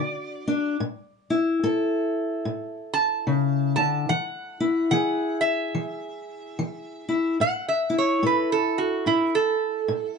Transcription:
Already playing: steel-string acoustic guitar D3 D4 F#4, resonator guitar played with a steel bar D5
0.48 steel-string acoustic guitar D4
0.80 steel-string acoustic guitar A2
1.30 steel-string acoustic guitar E4
1.63 steel-string acoustic guitar A2 A4
2.45 steel-string acoustic guitar A2
2.94 resonator guitar played with a steel bar A5
3.27 steel-string acoustic guitar C#3
3.76 steel-string acoustic guitar D3, resonator guitar played with a steel bar A5
4.09 steel-string acoustic guitar E3, resonator guitar played with a steel bar F#5
4.60 steel-string acoustic guitar E4
4.91 steel-string acoustic guitar E3 G#4, resonator guitar played with a steel bar F#5
5.41 resonator guitar played with a steel bar E5
5.75 steel-string acoustic guitar E3
6.59 steel-string acoustic guitar E3
7.09 steel-string acoustic guitar E4
7.40 steel-string acoustic guitar A2, resonator guitar played with a steel bar F#5
7.68 resonator guitar played with a steel bar E5
7.90 steel-string acoustic guitar E4
7.98 resonator guitar played with a steel bar C#5
8.23 steel-string acoustic guitar A2 A4, resonator guitar played with a steel bar B4
8.52 resonator guitar played with a steel bar A4
8.78 resonator guitar played with a steel bar F#4
9.06 steel-string acoustic guitar A2, resonator guitar played with a steel bar E4
9.35 resonator guitar played with a steel bar A4
9.88 steel-string acoustic guitar A2

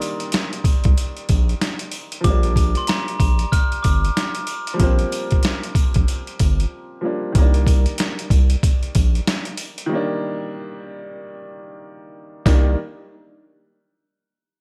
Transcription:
Already playing: upright piano D#3 G3 A#3 D4
0.01 closed hi-hat, sleigh bells
0.20 closed hi-hat
0.32 snare, closed hi-hat, sleigh bells
0.53 closed hi-hat
0.64 kick, closed hi-hat, sleigh bells
0.84 analog synth bass C2, kick, closed hi-hat
0.97 closed hi-hat, sleigh bells
1.17 closed hi-hat
1.29 analog synth bass A#1, kick, closed hi-hat, sleigh bells
1.49 closed hi-hat
1.62 snare, closed hi-hat, sleigh bells
1.79 closed hi-hat
1.92 closed hi-hat, sleigh bells
2.12 closed hi-hat
2.21 upright piano F3 G3, glockenspiel D6, kick, closed hi-hat
2.25 analog synth bass A#1, upright piano A#3, sleigh bells
2.29 upright piano D4
2.43 closed hi-hat
2.56 kick, closed hi-hat, sleigh bells
2.75 glockenspiel C6, closed hi-hat
2.87 glockenspiel A#5, snare, closed hi-hat, sleigh bells
3.08 closed hi-hat
3.19 analog synth bass A#1, glockenspiel A#5, kick, closed hi-hat, sleigh bells
3.39 closed hi-hat
3.52 glockenspiel F6, kick, closed hi-hat, sleigh bells
3.72 closed hi-hat
3.83 analog synth bass G1, glockenspiel D6, kick, closed hi-hat, sleigh bells
4.05 closed hi-hat
4.17 snare, closed hi-hat, sleigh bells
4.35 closed hi-hat
4.47 closed hi-hat, sleigh bells
4.67 closed hi-hat
4.74 upright piano F3 G3
4.80 analog synth bass A#1, upright piano A#3 C4, kick, closed hi-hat, sleigh bells
4.99 closed hi-hat
5.12 closed hi-hat, sleigh bells
5.31 kick, closed hi-hat
5.43 snare, closed hi-hat, sleigh bells
5.63 closed hi-hat
5.75 kick, closed hi-hat, sleigh bells
5.94 analog synth bass A#1, kick, closed hi-hat
6.08 closed hi-hat, sleigh bells
6.27 closed hi-hat
6.39 analog synth bass G1, kick, closed hi-hat, sleigh bells
6.60 closed hi-hat
7.01 upright piano F3 G3 A#3
7.05 upright piano D4
7.32 analog synth bass C2, upright piano D#3 G3, kick, closed hi-hat, sleigh bells
7.38 upright piano A#3 D4
7.54 closed hi-hat
7.67 kick, closed hi-hat, sleigh bells
7.86 closed hi-hat
7.98 snare, closed hi-hat, sleigh bells
8.19 closed hi-hat
8.30 analog synth bass C2, kick, closed hi-hat, sleigh bells
8.50 closed hi-hat
8.63 kick, closed hi-hat, sleigh bells
8.83 closed hi-hat
8.95 analog synth bass A#1, kick, closed hi-hat, sleigh bells
9.15 closed hi-hat
9.27 snare, closed hi-hat, sleigh bells
9.45 closed hi-hat
9.57 closed hi-hat, sleigh bells
9.78 closed hi-hat
9.86 upright piano D#3 G3
9.92 upright piano A#3 D4
12.46 analog synth bass C2, upright piano D#3 G3 A#3 D4, kick, snare, sleigh bells

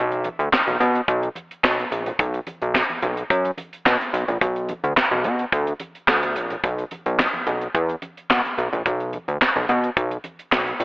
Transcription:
Already playing: analog synth bass B1
0.12 closed hi-hat, muted conga
0.24 closed hi-hat, high conga
0.39 analog synth bass D2, closed hi-hat
0.53 kick, snare, clap, muted conga
0.67 analog synth bass B1, closed hi-hat, high conga
0.80 analog synth bass B2, closed hi-hat, low conga
0.95 closed hi-hat
1.08 analog synth bass B1, kick, closed hi-hat
1.22 closed hi-hat, muted conga
1.35 closed hi-hat, high conga
1.51 closed hi-hat
1.64 analog synth bass B1, kick, snare, clap
1.79 closed hi-hat, muted conga
1.91 analog synth bass A#1, closed hi-hat
2.06 closed hi-hat, low conga
2.19 analog synth bass B1, kick, closed hi-hat, muted conga, low conga
2.34 closed hi-hat
2.47 closed hi-hat, high conga
2.62 analog synth bass B1, closed hi-hat
2.75 kick, snare, clap, muted conga
2.89 closed hi-hat, muted conga, high conga
3.02 analog synth bass B1, closed hi-hat, low conga
3.17 closed hi-hat
3.30 analog synth bass F#2, kick, closed hi-hat, muted conga
3.45 closed hi-hat, muted conga
3.57 closed hi-hat, high conga
3.73 closed hi-hat
3.85 analog synth bass B2, kick, snare, clap, muted conga
4.01 closed hi-hat, muted conga
4.13 analog synth bass B1, closed hi-hat
4.28 analog synth bass A#1, closed hi-hat, low conga
4.41 analog synth bass B1, kick, closed hi-hat, low conga
4.56 closed hi-hat
4.69 closed hi-hat, high conga
4.84 analog synth bass D2, closed hi-hat
4.97 kick, snare, clap
5.11 analog synth bass B1, closed hi-hat, muted conga, high conga
5.24 analog synth bass B2, closed hi-hat, low conga
5.39 closed hi-hat
5.52 analog synth bass D2, kick, closed hi-hat, muted conga
5.67 closed hi-hat, muted conga
5.80 closed hi-hat, high conga
5.95 closed hi-hat
6.07 analog synth bass D2, kick, snare, clap, muted conga
6.23 closed hi-hat, muted conga
6.36 analog synth bass A#1, closed hi-hat
6.50 closed hi-hat, low conga
6.64 analog synth bass B1, kick, closed hi-hat, muted conga, low conga
6.78 closed hi-hat
6.91 closed hi-hat, high conga
7.06 analog synth bass B1, closed hi-hat
7.19 kick, snare, clap, muted conga
7.33 closed hi-hat, muted conga, high conga
7.47 analog synth bass B1, closed hi-hat, low conga
7.61 closed hi-hat
7.75 analog synth bass E2, kick, closed hi-hat, muted conga
7.89 closed hi-hat, muted conga
8.02 closed hi-hat, high conga
8.17 closed hi-hat
8.30 analog synth bass B2, kick, snare, clap
8.45 closed hi-hat, muted conga
8.58 analog synth bass B1, closed hi-hat
8.72 analog synth bass A#1, closed hi-hat, low conga
8.86 analog synth bass B1, kick, closed hi-hat, muted conga, low conga
9.00 closed hi-hat
9.13 closed hi-hat, high conga
9.28 analog synth bass D2, closed hi-hat
9.41 kick, snare, clap
9.56 analog synth bass B1, closed hi-hat, high conga
9.69 analog synth bass B2, closed hi-hat, low conga
9.84 closed hi-hat
9.97 analog synth bass B1, kick, closed hi-hat
10.11 closed hi-hat, muted conga
10.24 closed hi-hat, high conga
10.39 closed hi-hat
10.52 analog synth bass B1, kick, snare, clap
10.67 closed hi-hat, muted conga
10.80 analog synth bass A#1, closed hi-hat

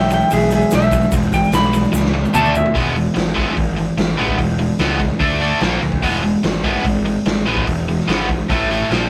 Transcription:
Already playing: picked electric bass B1, electric slide guitar E5 G5
0.10 overdriven electric guitar E3 G#3, electric slide guitar E5 G5, open hi-hat, shaker
0.21 shaker
0.31 picked electric bass B1, overdriven electric guitar E3 G#3, electric slide guitar G#4 E5, open hi-hat, shaker
0.40 shaker
0.50 overdriven electric guitar E3 G#3, open hi-hat, shaker
0.55 electric slide guitar G#4 E5
0.62 shaker
0.71 picked electric bass B1, overdriven electric guitar E3 G#3, snare, open hi-hat, shaker
0.75 electric slide guitar E5
0.81 shaker
0.91 overdriven electric guitar E3 G#3, kick, open hi-hat, shaker
1.02 shaker
1.12 picked electric bass E1, overdriven electric guitar E3 G#3, kick, open hi-hat, shaker
1.22 shaker
1.32 picked electric bass G#1, overdriven electric guitar E3 G#3, electric slide guitar G5, kick, open hi-hat, shaker
1.44 shaker
1.52 picked electric bass B1, overdriven electric guitar E3 G#3, electric slide guitar B5, snare, open hi-hat, shaker
1.73 overdriven electric guitar E3 G#3, open hi-hat, shaker
1.84 shaker
1.92 picked electric bass C#2, overdriven electric guitar E3 G#3, snare, shaker
2.06 snare
2.14 overdriven electric guitar E3 G#3
2.25 high tom, shaker
2.33 picked electric bass D2, overdriven electric guitar D3 A3 D4, electric slide guitar A5, mid tom, shaker
2.45 shaker
2.54 overdriven electric guitar D3 A3, electric slide guitar E5, floor tom, shaker
2.66 floor tom
2.74 picked electric bass E1, overdriven electric guitar E3 G#3 B3, kick, open hi-hat
2.95 overdriven electric guitar E3 G#3, open hi-hat
3.14 picked electric bass G#1, overdriven electric guitar E3 G#3, snare, open hi-hat
3.34 overdriven electric guitar E3 G#3 B3, kick, open hi-hat
3.54 picked electric bass G#1, overdriven electric guitar E3 G#3, kick, open hi-hat
3.77 overdriven electric guitar E3 G#3, open hi-hat
3.97 picked electric bass G#1, overdriven electric guitar E3 G#3, snare, open hi-hat
4.17 picked electric bass A1, overdriven electric guitar E3 G#3 B3, open hi-hat
4.29 kick
4.38 picked electric bass E1, overdriven electric guitar E3 G#3, kick, open hi-hat
4.59 overdriven electric guitar E3 G#3, open hi-hat
4.79 picked electric bass C#2, overdriven electric guitar E3 G#3 B3, snare, open hi-hat
4.99 overdriven electric guitar E3 G#3, kick, open hi-hat
5.19 picked electric bass D2, overdriven electric guitar D3 A3 D4, kick, open hi-hat
5.40 overdriven electric guitar D3 A3 D4, open hi-hat
5.61 picked electric bass A#1, overdriven electric guitar A#2 F3 A#3, snare, open hi-hat
5.81 picked electric bass D2, overdriven electric guitar A#2 F3, open hi-hat
5.92 kick
6.02 picked electric bass E1, overdriven electric guitar E3 G#3 B3, kick, open hi-hat
6.23 overdriven electric guitar E3 G#3, open hi-hat
6.43 picked electric bass G#1, overdriven electric guitar E3 G#3, snare, open hi-hat
6.64 overdriven electric guitar E3 G#3 B3, kick, open hi-hat
6.84 picked electric bass G#1, overdriven electric guitar E3 G#3, kick, open hi-hat
7.05 overdriven electric guitar E3 G#3, open hi-hat
7.25 picked electric bass G#1, overdriven electric guitar E3 G#3, snare, open hi-hat
7.46 picked electric bass A1, overdriven electric guitar E3 G#3 B3, open hi-hat
7.57 kick
7.67 picked electric bass E1, overdriven electric guitar E3 G#3, kick, open hi-hat
7.88 overdriven electric guitar E3 G#3, open hi-hat
8.00 snare
8.08 picked electric bass G#1, overdriven electric guitar E3 G#3 B3, snare, open hi-hat
8.29 overdriven electric guitar E3 G#3, kick, open hi-hat
8.49 picked electric bass A1, overdriven electric guitar A2 E3 A3, kick, open hi-hat
8.70 overdriven electric guitar A2 E3 A3, open hi-hat
8.90 picked electric bass A#1, overdriven electric guitar A#2 F3 A#3, snare, open hi-hat

